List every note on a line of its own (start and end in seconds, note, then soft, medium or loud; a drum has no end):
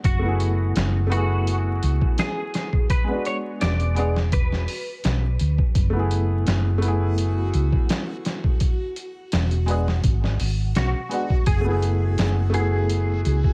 0.04 0.73 F#1 medium
0.04 13.53 F#4 medium
0.04 1.11 F#4 medium
0.04 kick loud
0.04 closed hi-hat medium
0.19 1.05 A3 medium
0.19 1.07 B3 medium
0.25 1.08 E4 medium
0.25 1.10 G#4 medium
0.40 closed hi-hat medium
0.76 1.80 F#1 medium
0.76 snare loud
0.76 closed hi-hat medium
1.07 2.85 A3 medium
1.07 2.87 B3 medium
1.12 2.89 E4 medium
1.12 2.19 F#4 medium
1.12 closed hi-hat medium
1.16 2.90 G#4 loud
1.47 closed hi-hat medium
1.83 2.00 C#2 medium
1.83 closed hi-hat medium
2.02 kick medium
2.18 2.86 G#4 loud
2.18 snare loud
2.18 closed hi-hat medium
2.54 snare medium
2.54 closed hi-hat medium
2.73 kick medium
2.90 3.26 B4 loud
2.90 kick loud
2.90 closed hi-hat medium
3.04 3.91 G#3 medium
3.04 3.92 B3 medium
3.11 3.94 D4 medium
3.11 3.95 F#4 medium
3.25 3.36 C#5 loud
3.25 closed hi-hat medium
3.61 4.65 E1 medium
3.61 4.33 D5 medium
3.61 snare loud
3.61 closed hi-hat medium
3.80 closed hi-hat soft
3.95 4.13 G#3 medium
3.95 4.14 B3 medium
3.95 4.15 D4 medium
3.95 closed hi-hat medium
3.99 4.16 G#4 loud
4.16 snare soft
4.32 5.36 B4 medium
4.32 kick loud
4.32 closed hi-hat medium
4.52 snare soft
4.68 open hi-hat medium
5.04 5.36 B1 medium
5.04 snare loud
5.04 closed hi-hat medium
5.39 5.57 D2 medium
5.39 closed hi-hat medium
5.58 kick medium
5.75 6.44 F#1 loud
5.75 kick loud
5.75 closed hi-hat medium
5.90 6.76 A3 medium
5.90 6.78 B3 medium
5.96 6.79 E4 medium
5.96 6.81 G#4 medium
6.11 closed hi-hat medium
6.47 7.51 F#1 medium
6.47 snare loud
6.47 closed hi-hat medium
6.78 8.57 A3 medium
6.78 8.59 B3 medium
6.82 8.60 E4 medium
6.82 closed hi-hat medium
6.88 8.62 G#4 loud
7.18 closed hi-hat medium
7.54 7.71 C#2 medium
7.54 closed hi-hat medium
7.73 kick medium
7.89 snare loud
7.89 closed hi-hat medium
8.25 snare medium
8.25 closed hi-hat medium
8.44 kick medium
8.60 kick medium
8.60 closed hi-hat medium
8.96 closed hi-hat medium
9.32 10.04 E1 medium
9.32 snare loud
9.32 closed hi-hat medium
9.51 closed hi-hat soft
9.66 9.85 G#3 loud
9.66 9.86 B3 medium
9.66 9.87 D4 medium
9.66 closed hi-hat medium
9.71 9.87 G#4 loud
9.88 snare soft
10.04 10.36 G#1 medium
10.04 kick loud
10.04 closed hi-hat medium
10.24 snare soft
10.40 10.72 G#1 medium
10.40 open hi-hat medium
10.75 10.93 B1 medium
10.75 11.43 F#4 medium
10.75 snare loud
10.75 closed hi-hat medium
11.09 11.28 G#3 medium
11.09 11.28 B3 medium
11.09 11.29 D4 medium
11.09 closed hi-hat medium
11.13 11.30 F#4 loud
11.30 kick medium
11.46 12.15 F#1 loud
11.46 12.53 G#4 medium
11.46 kick loud
11.46 closed hi-hat medium
11.61 12.48 A3 medium
11.61 12.49 B3 medium
11.68 12.51 E4 medium
11.68 12.52 G#4 medium
11.82 closed hi-hat medium
12.18 13.23 F#1 medium
12.18 snare loud
12.18 closed hi-hat medium
12.50 13.53 A3 medium
12.50 13.53 B3 medium
12.54 13.53 E4 medium
12.54 13.53 G#4 medium
12.54 closed hi-hat medium
12.59 13.53 G#4 loud
12.90 closed hi-hat medium
13.25 13.43 C#2 medium
13.25 closed hi-hat medium
13.44 kick medium